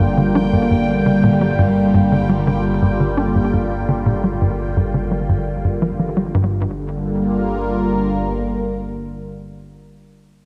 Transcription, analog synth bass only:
0.17 0.26 D3 medium
0.35 0.40 D4 medium
0.53 0.58 G2 medium
0.71 0.76 G2 medium
1.06 1.11 D3 medium
1.23 1.32 A#2 loud
1.41 1.46 G3 medium
1.59 1.67 G2 loud
1.94 2.03 G2 medium
2.12 2.17 D3 medium
2.29 2.38 G3 medium
2.47 2.52 D3 loud
2.82 2.91 G2 medium
3.00 3.08 D3 medium
3.17 3.22 D4 medium
3.35 3.40 G2 medium
3.53 3.58 G2 medium
3.89 3.93 D3 medium
4.06 4.14 A#2 medium
4.24 4.29 G3 medium
4.41 4.50 G2 medium
4.77 4.85 G2 medium
4.94 4.99 D3 medium
5.11 5.20 G3 medium
5.29 5.38 G2 medium
5.64 5.77 G2 medium
5.82 5.91 F3 medium
5.99 6.12 F3 medium
6.17 6.30 G3 medium
6.34 6.67 G2 medium

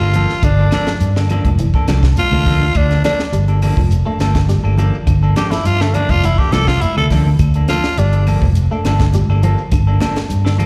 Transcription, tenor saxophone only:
0.00 0.46 F4 medium
0.44 0.73 D4 medium
0.74 1.00 D4 medium
2.19 2.79 F4 loud
2.77 3.04 D4 medium
3.05 3.22 D4 loud
5.37 5.52 G4 medium
5.51 5.68 E4 medium
5.66 5.83 F4 loud
5.82 5.96 A3 medium
5.95 6.12 D4 medium
6.10 6.27 F4 loud
6.26 6.40 E4 medium
6.38 6.54 G4 medium
6.53 6.69 A4 loud
6.68 6.83 F4 loud
6.81 6.97 E4 medium
6.98 7.06 A4 medium
7.69 8.00 F4 medium
7.99 8.28 D4 medium

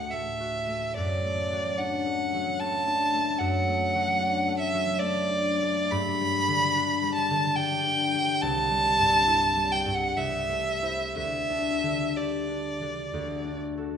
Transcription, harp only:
0.00 1.01 D2 soft
0.00 1.01 A2 soft
0.00 0.12 A3 soft
0.00 0.39 F#4 soft
0.13 0.67 A3 soft
0.40 4.30 F#4 soft
0.68 1.23 A3 soft
0.97 3.39 F#2 soft
1.24 2.04 A3 soft
1.52 2.33 F#3 soft
1.78 2.86 D4 soft
2.06 2.59 A3 soft
2.34 3.94 F#3 soft
2.61 3.13 A3 soft
2.87 4.19 D4 soft
3.14 3.66 A3 soft
3.40 5.95 F#2 soft
3.67 4.46 A3 soft
3.95 4.73 F#3 soft
4.21 5.29 D4 soft
4.48 5.00 A3 soft
4.74 5.95 F#3 soft
5.01 5.60 A3 soft
5.30 6.74 D4 soft
5.61 5.95 A3 soft
5.91 8.46 G2 medium
6.20 7.02 G3 soft
6.48 7.29 D3 soft
6.75 7.85 D4 soft
7.03 7.57 G3 soft
7.31 8.46 D3 soft
7.58 8.13 G3 soft
7.86 8.46 D4 soft
8.15 8.70 G3 soft
8.42 10.15 C2 soft
8.71 9.55 G3 soft
8.99 9.85 G2 soft
9.28 10.81 E4 soft
9.57 10.20 G3 soft
9.86 10.20 G2 soft
10.16 11.20 C2 soft
10.49 11.20 A3 soft
10.82 11.21 E4 soft
10.82 11.21 C5 soft
11.15 13.12 D2 soft
11.50 12.47 D4 soft
11.83 12.80 D3 soft
12.16 13.17 G4 soft
12.48 13.43 D4 soft
12.81 13.17 D3 soft
13.14 13.97 D2 soft
13.44 13.97 D4 soft
13.77 13.97 F#4 soft
13.77 13.97 A4 soft

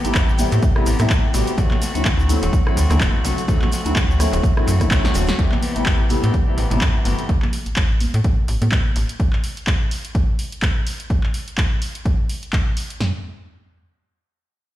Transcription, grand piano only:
0.04 0.26 C3 medium
0.04 0.26 G3 medium
0.04 0.26 A3 medium
0.04 0.26 B3 medium
0.04 0.26 E4 loud
0.38 0.61 C3 medium
0.38 0.61 G3 medium
0.38 0.61 A3 medium
0.38 0.61 B3 medium
0.38 0.61 E4 medium
0.76 0.88 C3 medium
0.76 0.88 G3 medium
0.76 0.88 A3 medium
0.76 0.88 B3 medium
0.76 0.89 E4 medium
1.00 1.21 C3 loud
1.00 1.21 G3 medium
1.00 1.21 A3 medium
1.00 1.21 B3 medium
1.00 1.22 E4 loud
1.33 1.49 C3 medium
1.33 1.49 G3 medium
1.33 1.49 A3 medium
1.33 1.49 B3 medium
1.33 1.49 F#4 medium
1.58 1.73 D3 medium
1.58 1.73 F#3 medium
1.58 1.73 A3 medium
1.58 1.73 C4 medium
1.58 1.73 E4 medium
1.94 2.16 D3 medium
1.94 2.16 F#3 medium
1.94 2.16 A3 medium
1.94 2.16 C4 medium
1.94 2.17 E4 loud
2.28 2.51 D3 medium
2.28 2.51 F#3 medium
2.28 2.51 A3 medium
2.28 2.51 C4 medium
2.28 2.51 E4 medium
2.66 2.79 D3 medium
2.66 2.79 F#3 medium
2.66 2.79 A3 medium
2.66 2.79 C4 medium
2.66 2.79 E4 loud
2.90 3.12 D3 loud
2.90 3.12 F#3 medium
2.90 3.12 A3 medium
2.90 3.12 C4 medium
2.90 3.12 E4 loud
3.24 3.39 D3 medium
3.24 3.39 F#3 medium
3.24 3.39 A3 medium
3.24 3.40 C4 medium
3.24 3.40 F#4 medium
3.48 3.63 D3 medium
3.48 3.63 F#3 medium
3.48 3.63 A3 medium
3.48 3.63 C4 medium
3.48 3.63 E4 medium
3.85 4.07 D3 medium
3.85 4.07 F#3 medium
3.85 4.07 A3 medium
3.85 4.07 C4 medium
3.85 4.07 E4 loud
4.19 4.42 D3 medium
4.19 4.42 F#3 medium
4.19 4.42 A3 medium
4.19 4.42 C4 medium
4.19 4.42 E4 loud
4.56 4.69 D3 medium
4.56 4.69 F#3 medium
4.56 4.69 A3 medium
4.56 4.69 C4 medium
4.56 4.69 E4 medium
4.80 5.02 D3 loud
4.80 5.02 F#3 medium
4.80 5.02 A3 medium
4.80 5.02 C4 medium
4.80 5.02 E4 loud
5.15 5.30 D3 medium
5.15 5.30 F#3 medium
5.15 5.30 A3 medium
5.15 5.30 C4 medium
5.15 5.30 F#4 medium
5.39 5.54 C3 medium
5.39 5.54 G3 medium
5.39 5.54 A3 medium
5.39 5.54 B3 medium
5.39 5.54 E4 medium
5.76 5.97 C3 medium
5.76 5.97 G3 medium
5.76 5.98 A3 medium
5.76 5.98 B3 medium
5.76 5.98 E4 medium
6.10 6.32 C3 medium
6.10 6.32 G3 medium
6.10 6.32 A3 medium
6.10 6.32 B3 medium
6.10 6.32 E4 medium
6.47 6.60 C3 medium
6.47 6.60 G3 medium
6.47 6.60 A3 medium
6.47 6.60 B3 medium
6.47 6.60 E4 medium
6.71 6.93 C3 medium
6.71 6.93 G3 medium
6.71 6.93 A3 medium
6.71 6.93 B3 medium
6.71 6.93 E4 loud
7.05 7.20 C3 medium
7.05 7.20 G3 medium
7.05 7.20 A3 medium
7.05 7.20 B3 medium
7.05 7.20 F#4 medium

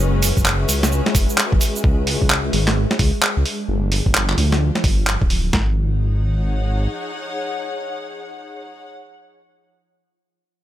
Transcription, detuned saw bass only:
0.00 0.32 F#1 loud
0.37 0.66 F#1 medium
0.69 1.02 C#2 medium
1.15 1.26 F#1 medium
1.52 1.59 F#1 loud
1.84 2.17 C#2 loud
2.22 2.51 C#2 medium
2.53 2.86 G#1 medium
2.99 3.11 C#2 medium
3.37 3.44 C#2 loud
3.68 4.02 G1 loud
4.06 4.35 G1 medium
4.38 4.71 D2 medium
4.84 5.17 G1 medium
5.22 5.50 D1 medium
5.53 6.88 G#1 medium

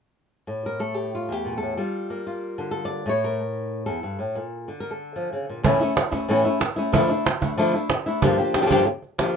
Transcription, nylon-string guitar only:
0.47 1.28 A2 medium
0.66 0.80 A#4 medium
0.79 1.75 A3 soft
0.79 0.94 A4 medium
0.94 1.14 G4 medium
1.15 1.32 F4 medium
1.29 1.77 E2 soft
1.29 1.56 G4 medium
1.45 1.61 A#2 soft
1.58 2.40 A4 medium
1.62 1.77 A2 soft
1.77 3.04 G3 medium
1.77 2.26 F4 soft
2.10 3.05 A#3 soft
2.27 3.05 F4 soft
2.58 3.04 D3 soft
2.71 2.86 A4 medium
2.85 3.09 D5 medium
3.06 3.87 A2 medium
3.06 3.39 A3 soft
3.06 4.34 E4 soft
3.06 3.25 C#5 medium
3.24 3.86 A#4 medium
3.86 4.03 E2 medium
3.86 4.56 A4 medium
4.03 4.19 G2 soft
4.19 4.35 A2 soft
4.35 4.68 A#2 medium
4.68 5.64 D3 soft
4.80 4.91 A#4 medium
4.91 5.58 A4 medium
5.16 5.32 F3 soft
5.33 5.49 C#3 soft
5.49 5.63 A#2 soft
5.63 5.79 A2 medium
5.63 5.80 E3 medium
5.63 5.80 A3 medium
5.63 5.80 C#4 medium
5.63 5.79 E4 medium
5.81 5.96 A3 soft
5.81 5.96 C#4 soft
5.81 5.96 E4 medium
5.97 muted nylon-string guitar stroke medium
6.11 6.29 A3 soft
6.11 6.28 C#4 soft
6.11 6.28 E4 soft
6.29 6.44 A2 medium
6.29 6.44 E3 medium
6.29 6.45 A3 medium
6.29 6.45 C#4 medium
6.29 6.44 E4 medium
6.45 6.60 A3 soft
6.45 6.60 C#4 soft
6.45 6.60 E4 medium
6.60 muted nylon-string guitar stroke medium
6.76 6.92 A3 soft
6.76 6.93 C#4 soft
6.76 6.92 E4 medium
6.92 7.08 D3 medium
6.92 7.09 F3 medium
6.92 7.09 A3 medium
6.92 7.09 D4 medium
6.92 7.08 E4 medium
7.10 7.26 A3 soft
7.10 7.25 D4 soft
7.10 7.25 E4 medium
7.26 muted nylon-string guitar stroke medium
7.41 7.57 A3 soft
7.41 7.57 D4 soft
7.41 7.57 E4 medium
7.58 7.73 D3 medium
7.58 7.73 F3 medium
7.58 7.73 A3 medium
7.58 7.74 D4 medium
7.58 7.72 E4 medium
7.74 7.89 A3 soft
7.74 7.90 D4 soft
7.74 7.89 E4 medium
7.90 muted nylon-string guitar stroke medium
8.06 8.22 A3 soft
8.06 8.22 D4 soft
8.06 8.22 E4 medium
8.22 8.37 G2 medium
8.22 8.38 D3 medium
8.22 8.38 F3 medium
8.22 8.38 A#3 medium
8.22 8.37 D4 medium
8.22 8.37 G4 medium
8.38 8.54 F3 soft
8.38 8.54 A#3 soft
8.38 8.54 D4 medium
8.38 8.54 G4 medium
8.55 8.61 F3 soft
8.55 8.61 A#3 soft
8.55 8.61 D4 medium
8.55 8.62 G4 medium
8.61 8.65 D3 soft
8.61 8.65 F3 medium
8.61 8.66 A#3 medium
8.61 8.66 D4 soft
8.61 8.66 G4 medium
8.66 8.70 D3 medium
8.66 8.69 F3 medium
8.66 8.70 A#3 medium
8.66 8.70 D4 medium
8.66 8.71 G4 medium
8.70 8.85 G2 medium
8.70 8.85 D3 medium
8.70 8.85 F3 medium
8.70 8.86 A#3 medium
8.70 8.86 D4 medium
8.70 8.86 G4 medium
8.86 muted nylon-string guitar stroke medium
9.18 9.37 F3 medium
9.18 9.37 A#3 medium
9.18 9.37 D4 medium
9.18 9.37 G4 medium

